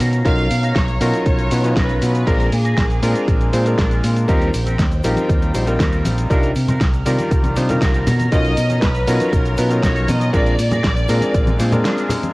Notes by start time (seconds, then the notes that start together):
Already playing: F5 A#5
0.00 B2 C#4 D#4 F4 A#4 C#5, open hi-hat, cabasa
0.13 closed hi-hat, cabasa
0.25 B1 F#3 C#4 D#4 F4 A#4 F5, kick, closed hi-hat, cabasa
0.38 closed hi-hat, cabasa
0.50 B2, open hi-hat, cabasa
0.63 C#4 D#4 F4 A#4, closed hi-hat, cabasa
0.76 B1 C#5, kick, snare, closed hi-hat, cabasa
0.88 closed hi-hat, cabasa
1.00 B2 F#3 C#4 D#4 F4 A#4, open hi-hat, cabasa
1.14 closed hi-hat, cabasa
1.26 B1 C#5, kick, closed hi-hat, cabasa
1.39 closed hi-hat, cabasa
1.51 B2 F#3 C#4 D#4 F4 B4, muted clean electric guitar stroke, open hi-hat, cabasa
1.63 F#3 C#4 D#4 F4 B4, closed hi-hat, cabasa
1.76 B1 C#4 D#4 F4 A#4 B4, kick, snare, closed hi-hat, cabasa
1.89 closed hi-hat, cabasa
2.02 B2, open hi-hat, cabasa
2.15 closed hi-hat, cabasa
2.26 A#1 G#3 C4 D4 F4 G#4 A#4 G#5 D6, kick, closed hi-hat, cabasa
2.40 closed hi-hat, cabasa
2.52 A#2 G#4, open hi-hat, cabasa
2.64 D4 F4 G#4 A#4, closed hi-hat, cabasa
2.77 A#1, kick, snare, closed hi-hat, cabasa
2.90 closed hi-hat, cabasa
3.02 A#2 G#3 C4 D4 F4 G#4 A#4, open hi-hat, cabasa
3.15 closed hi-hat, cabasa
3.28 A#1, kick, closed hi-hat, cabasa
3.41 closed hi-hat, cabasa
3.53 A#2 G#3 C4 D4 F4 C5, muted clean electric guitar stroke, snare, open hi-hat, cabasa
3.65 G#3 C4 D4 F4 A#4, closed hi-hat, cabasa
3.78 A#1 D4 F4 G#4 A#4, kick, snare, closed hi-hat, cabasa
3.91 closed hi-hat, cabasa
4.04 A#2, open hi-hat, cabasa
4.16 closed hi-hat, cabasa
4.28 D#2 G3 C4 D#4 F4 G4 A#4 C5 G5, kick, closed hi-hat, cabasa
4.42 closed hi-hat, cabasa
4.54 A#1, open hi-hat, cabasa
4.66 C4 D#4 G4 A#4, closed hi-hat, high conga, cabasa
4.79 D#2, kick, snare, closed hi-hat, cabasa
4.92 closed hi-hat, cabasa
5.04 A#1 G3 C4 D#4 F4 G4 A#4, open hi-hat, cabasa
5.17 closed hi-hat, high conga, cabasa
5.30 D#2, kick, closed hi-hat, cabasa
5.42 closed hi-hat, cabasa
5.54 A#1 G3 C4 D#4 F4 C5, muted clean electric guitar stroke, open hi-hat, cabasa
5.66 G3 C4 D#4 F4 A#4, muted clean electric guitar stroke, closed hi-hat, cabasa
5.80 D#2 C4 D#4 G4 A#4, kick, snare, closed hi-hat, cabasa
5.92 closed hi-hat, cabasa
6.05 A#1, open hi-hat, high conga, cabasa
6.18 closed hi-hat, cabasa
6.30 C2 G3 D4 D#4 F4 A#4 A#5 F6, kick, closed hi-hat, cabasa
6.43 closed hi-hat, cabasa
6.55 C3, open hi-hat, cabasa
6.67 D4 D#4 F4 A#4, closed hi-hat, high conga, low conga, cabasa
6.81 C2, kick, snare, closed hi-hat, cabasa
6.94 closed hi-hat, cabasa
7.06 C3 D#3 G3 D4 D#4 F4 A#4 D5, open hi-hat, cabasa
7.19 closed hi-hat, high conga, cabasa
7.31 C2, kick, closed hi-hat, cabasa
7.44 closed hi-hat, high conga, cabasa
7.56 C3 G3 D4 D#4 F4 C5 D#5, muted clean electric guitar stroke, snare, open hi-hat, cabasa
7.69 D#3 G3 F4 A#4, closed hi-hat, low conga, cabasa
7.81 C2 D4 D#4 F4 A#4 F#5, kick, snare, closed hi-hat, cabasa
7.94 closed hi-hat, cabasa
8.07 B2 C#4 D#4 F4 A#4 C#5, open hi-hat, low conga, cabasa
8.19 closed hi-hat, high conga, cabasa
8.32 B1 F#3 C#4 D#4 F4 A#4 D#5, kick, closed hi-hat, cabasa
8.45 closed hi-hat, cabasa
8.57 B2, open hi-hat, cabasa
8.70 C#4 D#4 F4 A#4, closed hi-hat, high conga, cabasa
8.82 B1 B4, kick, snare, closed hi-hat, cabasa
8.95 closed hi-hat, cabasa
9.07 B2 F#3 C#4 D#4 F4 A#4, open hi-hat, cabasa
9.20 closed hi-hat, high conga, cabasa
9.33 B1 A#4, kick, closed hi-hat, cabasa
9.46 closed hi-hat, cabasa
9.57 B2 F#3 C#4 D#4 F4 B4, muted clean electric guitar stroke, open hi-hat, cabasa
9.70 F#3 C#4 D#4 F4 A#4, muted clean electric guitar stroke, closed hi-hat, cabasa
9.83 B1 C#4 D#4 F4 A#4 C#5, kick, snare, closed hi-hat, cabasa
9.96 closed hi-hat, cabasa
10.08 B2 D#5, open hi-hat, high conga, cabasa
10.21 closed hi-hat, cabasa
10.33 A#1 G#3 C4 D4 F4 G#4 A#4 D5 G#5 D6, kick, closed hi-hat, cabasa
10.46 closed hi-hat, cabasa
10.59 A#2, open hi-hat, cabasa
10.71 D4 F4 G#4 A#4, closed hi-hat, high conga, low conga, cabasa
10.84 A#1, kick, snare, closed hi-hat, cabasa
10.97 closed hi-hat, cabasa
11.08 A#2 G#3 C4 D4 F4 G#4 A#4, open hi-hat, cabasa
11.21 closed hi-hat, high conga, cabasa
11.34 A#1, kick, closed hi-hat, cabasa
11.47 closed hi-hat, high conga, cabasa
11.59 A#2 G#3 C4 D4 F4 C5, muted clean electric guitar stroke, snare, open hi-hat, cabasa
11.71 G#3 C4 D4 F4 A#4, closed hi-hat, low conga, cabasa
11.85 D4 F4 G#4 A#4, snare, closed hi-hat, cabasa
11.98 closed hi-hat, cabasa
12.09 open hi-hat, low conga, cabasa
12.23 closed hi-hat, high conga, cabasa